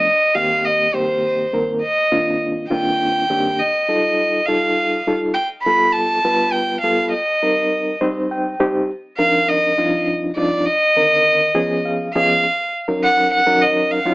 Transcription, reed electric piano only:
\new Staff \with { instrumentName = "Reed electric piano" } { \time 6/8 \key c \dorian \tempo 4. = 68 << { r2. | r2. | r2. | r2. |
r2 g''8 c''8 | r2. | r2 f''8 ees''8 | \key fis \major r2. | } \\ { r8 <g, ees bes c' g'>4 <g, ees bes c' g'>4 <g, ees bes c' bes'>8 | r8 <g, ees bes c' d' f'>4 <g, ees bes c' d' f'>4 <g, ees bes c' d' g'>8 | r8 <g ees' f' a'>4 <g ees' f' a'>4 <g ees' f' a'>8 | r8 <g b f' a'>4 <g b f' b'>4 <g b f' a'>8 |
r8 <g c' ees' bes'>4 <g c' ees' c''>4 <g c' ees' g'>8 | r8 <g, f c' d' ees' bes'>4 <g, f c' d' ees' f'>4 <g, f c' d' ees' f'>8 | r8 <d ees c' bes'>4 <f ces' des' aes'>4 <f ces' des' aes'>8 | r8. <fis cis' dis' ais'>4 <fis cis' dis' ais'>4 <fis cis' dis' eis'>16 | } >> }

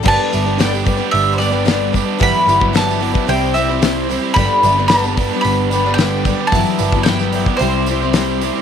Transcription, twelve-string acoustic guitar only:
\new Staff \with { instrumentName = "Twelve-string acoustic guitar" } { \time 4/4 \key g \major \tempo 4 = 111 <g, d g b d' b'>8 <g b d' b'>16 <g b d' b'>16 <g, d g b d' b'>16 <g b d' b'>16 <g b d' b'>16 <g b d' b'>8. <g b d' b'>16 <g b d' b'>16 <g, d g b d' b'>8 <g b d' b'>8 | <g, e fis b e' b'>8 <fis b e' b'>16 <fis b e' b'>16 <g, e fis b e' b'>8 <fis b e' b'>16 <fis b e' b'>16 <c g c' e' c''>8 <g c' e' c''>16 <c' e' c''>16 <c g c' e' c''>8 <g c' e' c''>8 | <g, d g b d' b'>8 <g b d' b'>16 <g b d' b'>16 <g, d g b d' b'>16 <g b d' b'>16 <g b d' b'>16 <g b d' b'>8. <g b d' b'>16 <g b d' b'>16 <g, d g b d' b'>8 <g b d' b'>8 | <g, e fis b e' b'>8 <fis b e' b'>16 <fis b e' b'>16 <g, e fis b e' b'>16 <fis b e' b'>16 <fis b e' b'>16 <fis b e' b'>16 <c g c' e' c''>8 <g c' e' c''>16 <c' e' c''>16 <c g c' e' c''>8 <g c' e' c''>8 | }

